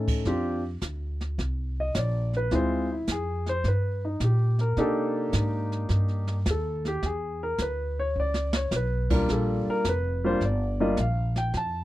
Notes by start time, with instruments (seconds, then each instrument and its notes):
Already playing: upright bass A2, grand piano A3 C#4 D#4 A4
0.08 kick, crash
0.25 upright bass F2, grand piano C4 D4 F4 G4, brush sweep, kick, snare
0.81 upright bass D2, kick, snare, hi-hat pedal
1.21 snare
1.38 upright bass C2, brush sweep, kick, snare
1.80 grand piano D#5
1.94 upright bass A#1, grand piano C#5, kick, snare, hi-hat pedal
1.99 grand piano D5
2.33 grand piano B4, snare
2.51 upright bass D2, grand piano G#3 C4 E4 F4, brush sweep, kick, snare
2.55 grand piano C5
2.92 grand piano E4
3.07 upright bass F2, kick, snare, hi-hat pedal
3.12 grand piano G#4
3.46 grand piano C5, snare
3.64 upright bass G2, brush sweep, kick, snare
3.68 grand piano B4
4.05 grand piano D#4
4.20 upright bass A#2, kick, snare, hi-hat pedal
4.24 grand piano G4
4.59 grand piano A#4, snare
4.77 upright bass C3, grand piano A#3 D4 D#4 G4 A4, brush sweep, kick, snare
5.33 upright bass G#2, kick, snare, hi-hat pedal
5.72 snare
5.89 upright bass G2, brush sweep, kick, snare
6.08 snare
6.27 snare
6.46 upright bass D#2, kick, snare, hi-hat pedal
6.51 grand piano A4
6.85 grand piano G4, snare
7.03 upright bass E2, grand piano G#4, brush sweep, kick, snare
7.43 grand piano A#4
7.58 upright bass D2, grand piano B4, kick, snare, hi-hat pedal
7.99 grand piano C#5
8.15 upright bass C#2
8.20 grand piano D5
8.34 snare
8.53 grand piano C#5, snare
8.71 upright bass B1, snare, hi-hat pedal
8.76 grand piano B4
9.10 grand piano G3 A#3 D4 F4 A#4, kick, crash
9.28 upright bass A#1, brush sweep, kick, snare
9.32 grand piano A4
9.66 grand piano A#4, muted upright bass stroke
9.84 upright bass F1, kick, snare, hi-hat pedal
9.89 grand piano B4
10.24 grand piano G3 A#3 D4 F4 C5
10.40 upright bass G1, brush sweep, kick, snare
10.45 grand piano D5
10.80 grand piano G3 A#3 D4 F4 D#5
10.97 upright bass A#1, grand piano F5, kick, snare, hi-hat pedal
11.36 grand piano G5, snare
11.53 upright bass F2, grand piano A5, brush sweep, kick, snare